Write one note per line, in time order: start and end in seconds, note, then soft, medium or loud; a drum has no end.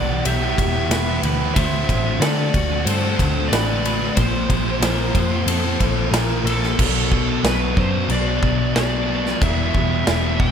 0.00 0.21 B1 medium
0.00 0.42 E2 medium
0.00 0.10 B2 medium
0.00 0.25 D5 medium
0.00 1.61 D5 loud
0.00 0.26 F#5 medium
0.07 0.42 E3 medium
0.07 0.41 G3 medium
0.07 0.39 B3 medium
0.07 0.38 G4 medium
0.11 0.43 B2 medium
0.25 0.54 B1 medium
0.25 0.91 G4 medium
0.25 1.19 E5 medium
0.25 ride medium
0.40 0.55 E3 medium
0.40 0.57 G3 medium
0.40 0.58 B3 medium
0.40 0.59 G4 medium
0.44 0.59 B2 medium
0.56 0.87 E1 medium
0.56 0.89 E2 medium
0.56 0.90 E3 medium
0.56 0.91 G3 medium
0.56 0.91 B3 medium
0.56 0.92 G4 medium
0.56 kick medium
0.56 ride medium
0.61 0.75 B2 medium
0.61 0.72 E3 medium
0.73 0.90 B2 medium
0.73 0.91 E3 medium
0.89 1.19 E1 medium
0.89 1.39 E2 medium
0.89 1.39 B2 medium
0.89 1.09 E3 medium
0.89 1.08 G3 medium
0.89 1.07 B3 loud
0.89 1.05 G4 loud
0.89 1.24 B4 medium
0.89 snare loud
0.89 ride loud
1.06 1.21 E3 medium
1.06 1.23 G3 medium
1.06 1.24 B3 medium
1.06 1.25 G4 medium
1.23 1.52 D2 medium
1.23 1.54 E2 medium
1.23 1.43 B2 medium
1.23 1.42 E3 medium
1.23 1.41 G3 medium
1.23 1.40 B3 medium
1.23 1.38 G4 medium
1.23 1.57 B4 medium
1.23 ride medium
1.39 1.55 E3 medium
1.39 1.55 G3 medium
1.39 1.55 B3 medium
1.39 1.54 G4 medium
1.44 1.56 B2 medium
1.55 1.85 D2 loud
1.55 2.20 D3 loud
1.55 2.06 A3 loud
1.55 2.59 C5 loud
1.55 2.20 E5 loud
1.55 kick loud
1.55 ride medium
1.59 2.06 C4 loud
1.59 1.72 D4 loud
1.59 2.03 F#4 loud
1.73 2.07 A3 medium
1.73 2.04 D4 medium
1.89 2.18 A1 medium
1.89 kick medium
1.89 ride medium
2.04 2.22 A3 medium
2.04 2.23 C4 medium
2.04 2.23 D4 medium
2.04 2.23 F#4 medium
2.20 2.49 D3 loud
2.20 2.53 D3 medium
2.20 2.39 A3 medium
2.20 2.39 C4 medium
2.20 2.54 A4 medium
2.20 2.88 D5 medium
2.20 snare loud
2.20 ride medium
2.24 2.54 D4 loud
2.24 2.36 F#4 loud
2.37 2.53 A3 medium
2.37 2.54 C4 medium
2.37 2.54 F#4 medium
2.53 2.83 D2 loud
2.53 3.02 D3 medium
2.53 2.71 A3 medium
2.53 2.69 D4 medium
2.53 2.88 F#4 medium
2.53 muted overdriven electric guitar stroke soft
2.53 kick medium
2.53 ride medium
2.69 3.04 A3 medium
2.69 3.03 C4 medium
2.69 3.00 D4 medium
2.69 3.01 F#4 medium
2.85 3.15 G2 medium
2.85 3.53 A4 medium
2.85 3.53 C5 medium
2.85 ride loud
3.01 3.20 C4 medium
3.01 3.20 D4 medium
3.01 3.21 F#4 medium
3.06 3.18 A3 medium
3.18 3.48 D2 medium
3.18 3.49 D3 medium
3.18 3.50 A3 medium
3.18 3.51 C4 medium
3.18 3.32 D4 medium
3.18 3.53 F#4 medium
3.18 kick medium
3.18 ride medium
3.34 3.49 A3 medium
3.34 3.50 D4 medium
3.48 4.09 A1 medium
3.48 3.81 D3 medium
3.48 3.70 A3 medium
3.48 3.83 D4 loud
3.48 4.17 D5 loud
3.52 3.69 C4 loud
3.52 3.67 F#4 medium
3.52 3.85 B4 medium
3.52 snare loud
3.52 ride medium
3.68 3.82 A3 medium
3.68 3.84 C4 medium
3.68 3.85 F#4 medium
3.83 4.14 D3 medium
3.83 4.02 A3 medium
3.83 4.01 C4 medium
3.83 3.98 D4 medium
3.83 3.98 F#4 medium
3.83 4.18 B4 medium
3.83 ride medium
3.99 4.16 C4 medium
3.99 4.14 D4 medium
3.99 4.15 F#4 medium
4.03 4.16 A3 medium
4.15 4.46 A#1 loud
4.15 4.80 A#2 medium
4.15 4.82 F3 medium
4.15 4.67 A#3 medium
4.15 4.66 C4 medium
4.15 4.64 F4 loud
4.15 6.09 C5 medium
4.15 kick loud
4.15 ride medium
4.19 4.83 C5 loud
4.33 4.67 F3 medium
4.33 4.64 A#3 medium
4.49 4.78 A#1 medium
4.49 kick medium
4.49 ride medium
4.65 4.81 F3 medium
4.65 4.82 A#3 medium
4.65 4.83 C4 medium
4.65 4.84 F4 medium
4.80 5.10 A#1 loud
4.80 5.31 A#2 medium
4.80 5.14 F3 medium
4.80 5.01 A#3 medium
4.80 5.16 A#4 medium
4.80 snare loud
4.80 ride loud
4.85 4.99 C4 loud
4.85 4.97 F4 loud
4.98 5.15 A#3 medium
4.98 5.15 C4 medium
4.98 5.15 F4 medium
5.13 5.44 F2 medium
5.13 5.63 A#2 medium
5.13 5.31 F3 medium
5.13 5.28 A#3 medium
5.13 5.48 F4 medium
5.13 muted overdriven electric guitar stroke medium
5.13 kick medium
5.13 ride medium
5.29 5.64 F3 medium
5.29 5.62 A#3 medium
5.29 5.63 C4 medium
5.29 5.61 F4 medium
5.34 5.65 A#3 medium
5.46 5.76 F2 medium
5.46 6.13 A4 medium
5.46 ride loud
5.62 5.80 F3 medium
5.62 5.80 A#3 medium
5.62 5.81 C4 medium
5.62 5.82 F4 medium
5.79 6.09 A#1 medium
5.79 6.10 A#2 medium
5.79 6.11 F3 medium
5.79 6.12 A#3 medium
5.79 6.12 C4 medium
5.79 6.13 F4 medium
5.79 kick medium
5.79 ride medium
5.96 6.11 F3 medium
5.96 6.12 A#3 medium
6.11 6.41 A#1 medium
6.11 6.61 A#2 medium
6.11 6.45 F3 medium
6.11 6.31 A#3 medium
6.11 6.29 C4 medium
6.11 6.27 F4 medium
6.11 6.46 A#4 medium
6.11 snare loud
6.11 ride medium
6.29 6.46 A#3 soft
6.29 6.47 C4 medium
6.29 6.48 F4 medium
6.44 6.74 A#1 medium
6.44 6.76 A#2 medium
6.44 6.77 F3 medium
6.44 6.79 A#3 medium
6.44 6.63 A#3 medium
6.44 7.46 A4 medium
6.44 ride medium
6.48 6.61 C4 medium
6.48 6.59 F4 medium
6.60 6.78 A#3 medium
6.60 6.77 C4 medium
6.60 6.76 F4 medium
6.60 snare soft
6.64 6.78 F3 medium
6.77 7.36 B1 loud
6.77 7.44 B2 medium
6.77 7.42 F#3 medium
6.77 7.13 B3 loud
6.77 7.12 D4 loud
6.77 7.10 F#4 loud
6.77 kick loud
6.77 crash loud
6.77 crash medium
7.11 7.44 B3 medium
7.11 7.45 D4 medium
7.11 7.45 F#4 medium
7.11 kick medium
7.42 7.73 B1 medium
7.42 8.08 B2 medium
7.42 8.09 F#3 medium
7.42 7.80 B3 medium
7.42 7.78 D4 medium
7.42 snare loud
7.42 crash medium
7.47 7.76 F#4 medium
7.47 7.79 B4 medium
7.77 8.06 F#2 loud
7.77 8.10 B3 medium
7.77 8.11 D4 medium
7.77 8.11 F#4 medium
7.77 8.12 C5 medium
7.77 kick medium
8.09 8.38 B1 loud
8.09 8.75 B2 medium
8.09 8.74 F#3 loud
8.09 8.45 B3 medium
8.09 8.44 D4 loud
8.09 8.41 F#4 loud
8.09 8.75 D5 medium
8.09 crash medium
8.42 8.72 B1 medium
8.42 9.08 F#3 medium
8.42 9.05 B3 medium
8.42 8.77 D4 medium
8.42 8.78 F#4 medium
8.42 kick medium
8.46 8.76 B3 medium
8.75 9.33 B1 medium
8.75 9.39 F#3 medium
8.75 9.10 B3 medium
8.75 9.09 D4 medium
8.75 9.06 F#4 medium
8.75 9.42 D5 medium
8.75 snare loud
8.75 crash medium
9.07 9.39 F#3 medium
9.07 9.38 B3 medium
9.07 9.44 D4 medium
9.07 9.39 F#4 medium
9.11 9.41 B3 medium
9.26 snare soft
9.41 9.70 E1 medium
9.41 10.07 E2 medium
9.41 10.07 B2 loud
9.41 9.77 E3 loud
9.41 9.76 G3 loud
9.41 9.75 B3 loud
9.41 9.73 E4 loud
9.41 10.43 E5 loud
9.41 kick loud
9.41 crash medium
9.74 10.03 E1 medium
9.74 10.06 G3 medium
9.74 10.07 B3 medium
9.74 10.08 E4 medium
9.74 kick medium
9.78 10.04 E3 medium
10.04 10.36 E1 loud
10.04 10.51 E2 medium
10.04 10.51 B2 medium
10.04 10.41 E3 medium
10.04 10.39 G3 medium
10.04 10.38 B3 medium
10.04 snare loud
10.04 crash medium
10.09 10.37 E4 medium
10.38 10.51 E1 medium
10.38 10.51 E3 medium
10.38 10.51 G3 medium
10.38 10.51 B3 medium
10.38 10.51 E4 medium
10.38 10.51 G5 loud
10.38 kick loud